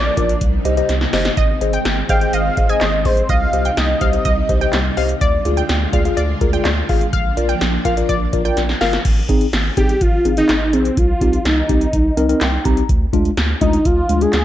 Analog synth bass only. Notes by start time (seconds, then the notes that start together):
Already playing: A#1
0.17 A#1
0.41 C2
0.65 C2
0.89 C2
1.13 G1
1.37 G#1
1.61 G#1
1.85 G#1
2.09 G#1
2.33 G#1
2.57 G#1
2.82 G#1
3.05 A#1
3.29 C2
3.53 C2
3.77 C2
4.01 C2
4.25 C2
4.49 C2
4.74 C2
4.97 C2
5.21 D2
5.45 D2
5.69 D2
5.93 D2
6.18 D2
6.41 D2
6.65 D2
6.89 G#1
7.13 A#1
7.37 A#1
7.61 A#1
7.85 A#1
8.09 A#1
8.33 A#1
8.57 A#1
8.81 G1
9.05 G#1
9.29 G#1
9.53 G#1
9.77 G#1
10.01 G#1
10.25 G#1
10.49 G#1
10.73 A#1
10.97 C2
11.21 C2
11.45 C2
11.69 C2
11.93 C2
12.17 C2
12.41 C2
12.65 C2
12.89 D2
13.13 D2
13.37 D2
13.61 D2
13.85 D2
14.09 D2
14.33 D2